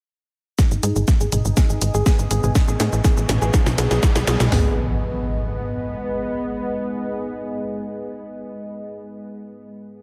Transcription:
0.59 1.23 D#4 loud
0.59 0.68 G#4 medium
0.59 2.53 B4 medium
0.59 2.53 D#5 medium
0.59 3.51 G#5 medium
0.59 2.53 D#6 medium
0.59 kick loud
0.59 snare soft
0.59 riser medium
0.59 shaker medium
0.71 0.80 G#1 medium
0.71 shaker soft
0.83 0.93 G#2 loud
0.83 0.93 G#4 loud
0.83 closed hi-hat loud
0.83 shaker medium
0.96 1.05 G#1 medium
0.96 1.05 G#4 medium
0.96 shaker soft
1.08 kick loud
1.08 snare medium
1.08 shaker medium
1.20 1.29 G#1 medium
1.20 1.29 G#4 loud
1.20 shaker soft
1.32 1.42 G#1 loud
1.32 1.97 D#4 loud
1.32 1.42 G#4 medium
1.32 closed hi-hat medium
1.32 mid tom medium
1.32 shaker medium
1.45 1.54 G#1 medium
1.45 shaker soft
1.57 1.66 G#4 medium
1.57 kick loud
1.57 snare medium
1.57 shaker medium
1.70 1.79 G#1 medium
1.70 1.78 G#4 medium
1.70 shaker soft
1.82 1.91 G#1 loud
1.82 closed hi-hat loud
1.82 shaker medium
1.94 2.03 G#1 medium
1.94 2.03 G#4 loud
1.94 shaker soft
2.06 2.52 B3 medium
2.06 2.16 G#4 medium
2.06 kick loud
2.06 snare medium
2.06 shaker medium
2.19 2.28 G#1 medium
2.19 shaker soft
2.31 2.40 G#1 loud
2.31 2.40 G#4 loud
2.31 closed hi-hat medium
2.31 shaker medium
2.43 2.52 G#1 medium
2.43 2.52 G#4 medium
2.43 mid tom medium
2.43 shaker soft
2.55 3.52 A4 medium
2.55 3.53 E5 medium
2.55 3.53 C#6 medium
2.55 kick loud
2.55 snare medium
2.55 shaker medium
2.68 2.77 A1 medium
2.68 2.77 G#4 loud
2.68 shaker soft
2.80 2.90 A2 loud
2.80 2.89 G#4 medium
2.80 snare medium
2.80 closed hi-hat loud
2.80 shaker medium
2.93 3.02 A1 medium
2.93 shaker soft
3.04 3.14 G#4 loud
3.04 kick loud
3.04 snare medium
3.04 shaker medium
3.17 3.26 A1 medium
3.17 3.26 G#4 medium
3.17 shaker soft
3.29 3.39 A1 loud
3.29 snare medium
3.29 closed hi-hat medium
3.29 mid tom medium
3.29 shaker medium
3.42 3.51 A1 medium
3.42 3.51 G#4 loud
3.42 shaker soft
3.54 3.63 G#4 medium
3.54 4.51 A4 medium
3.54 4.51 D#5 medium
3.54 4.51 F#5 medium
3.54 4.51 B5 medium
3.54 kick loud
3.54 snare medium
3.54 shaker medium
3.66 3.75 B1 medium
3.66 snare medium
3.66 mid tom medium
3.66 shaker soft
3.78 3.88 B1 loud
3.78 3.88 G#4 loud
3.78 snare medium
3.78 closed hi-hat loud
3.78 shaker medium
3.91 4.00 B1 medium
3.91 4.00 G#4 medium
3.91 snare medium
3.91 shaker soft
4.03 kick loud
4.03 snare loud
4.03 shaker medium
4.16 4.25 B1 medium
4.16 4.24 G#4 loud
4.16 snare medium
4.16 shaker soft
4.27 4.37 B1 loud
4.27 4.37 G#4 medium
4.27 snare loud
4.27 closed hi-hat medium
4.27 shaker medium
4.40 4.49 B1 medium
4.40 snare loud
4.40 mid tom medium
4.40 shaker soft
4.52 5.96 G#1 loud
4.52 9.21 G#3 medium
4.52 9.21 B3 loud
4.52 9.21 G#4 medium
4.52 4.75 G#4 medium
4.52 9.21 B4 medium
4.52 9.21 D#5 medium
4.52 snare loud
4.52 floor tom loud
4.52 open hi-hat medium
4.52 impact medium

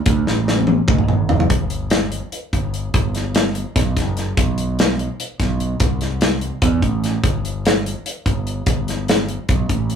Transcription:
0.06 0.24 D2 loud
0.06 kick loud
0.06 closed hi-hat medium
0.27 0.79 A1 medium
0.27 snare medium
0.48 snare medium
0.57 high tom medium
0.67 high tom medium
0.88 1.10 D2 medium
0.88 kick loud
0.88 mid tom medium
0.98 mid tom medium
1.08 1.44 G#1 medium
1.08 mid tom medium
1.29 floor tom loud
1.40 floor tom medium
1.50 2.20 G1 medium
1.50 kick loud
1.50 closed hi-hat medium
1.70 closed hi-hat medium
1.90 snare loud
1.90 closed hi-hat medium
2.12 closed hi-hat medium
2.32 closed hi-hat medium
2.53 2.88 G1 medium
2.53 kick medium
2.53 closed hi-hat medium
2.74 closed hi-hat medium
2.94 3.63 G1 medium
2.94 kick loud
2.94 closed hi-hat medium
3.15 snare soft
3.15 closed hi-hat medium
3.35 snare loud
3.35 closed hi-hat medium
3.55 closed hi-hat medium
3.76 3.93 B1 loud
3.76 kick loud
3.76 snare soft
3.76 closed hi-hat medium
3.97 4.31 F#1 medium
3.97 kick medium
3.97 snare soft
3.97 closed hi-hat medium
4.17 snare soft
4.17 closed hi-hat medium
4.37 5.06 B1 medium
4.37 kick loud
4.37 closed hi-hat medium
4.58 closed hi-hat medium
4.79 snare loud
4.79 closed hi-hat medium
4.99 closed hi-hat medium
5.20 closed hi-hat medium
5.40 5.74 B1 medium
5.40 kick medium
5.40 snare soft
5.40 closed hi-hat medium
5.60 closed hi-hat medium
5.80 6.50 C2 medium
5.80 kick loud
5.80 closed hi-hat medium
6.01 snare soft
6.01 closed hi-hat medium
6.21 snare loud
6.21 closed hi-hat medium
6.41 closed hi-hat medium
6.62 6.79 E2 medium
6.62 kick loud
6.62 closed hi-hat medium
6.82 7.17 A1 medium
6.82 kick medium
6.82 closed hi-hat medium
7.04 snare soft
7.04 closed hi-hat medium
7.24 7.93 G1 medium
7.24 kick loud
7.24 closed hi-hat medium
7.45 closed hi-hat medium
7.65 snare loud
7.65 closed hi-hat medium
7.86 closed hi-hat medium
8.06 closed hi-hat medium
8.26 8.60 G1 medium
8.26 kick medium
8.26 closed hi-hat medium
8.47 closed hi-hat medium
8.66 9.36 G1 medium
8.66 kick loud
8.66 closed hi-hat medium
8.88 snare soft
8.88 closed hi-hat medium
9.08 snare loud
9.08 closed hi-hat medium
9.29 closed hi-hat medium
9.49 9.66 B1 medium
9.49 kick loud
9.49 closed hi-hat medium
9.69 9.96 A1 medium
9.69 kick medium
9.69 closed hi-hat medium
9.90 closed hi-hat medium

